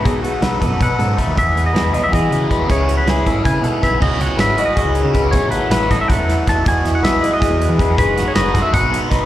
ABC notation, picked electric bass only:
X:1
M:7/8
L:1/16
Q:1/4=159
K:E
V:1 name="Picked electric bass" clef=bass
B,,,4 B,,,2 F,,2 B,,2 G,,2 z D,, | E,,4 E,,2 B,,,2 E,2 C,2 z D,, | C,,4 C,,2 G,,,2 C,2 B,,2 z B,,, | C,, z C,, z G,,,2 z3 C,,2 C, C,,2 |
B,,, A,,,2 z A,,,2 A,,, z B,,, E,,2 z E,, z | E,, z E,, z B,,,2 z3 E,,2 E, E,,2 | G,,, F,,,2 z F,,,2 F,,, z G,,, B,,,2 z B,,, z |]